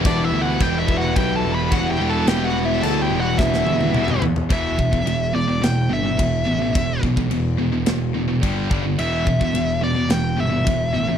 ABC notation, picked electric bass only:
X:1
M:4/4
L:1/8
Q:1/4=107
K:Em
V:1 name="Picked electric bass" clef=bass
E,,, D,, E,,,2 B,,, E,,, E,,, E,,, | E,,,2 D,, E,,, E,,, E,,, E,,, E,, | E,,, E,,, E,,, E,,, E,,, G,,, E,,, A,,, | E,,, B,,, E,,, E,,, E,,, E,,, G,,, G,,, |
E,,, E,,, E,,, E,,, E,,, G,,, E,,, A,,, |]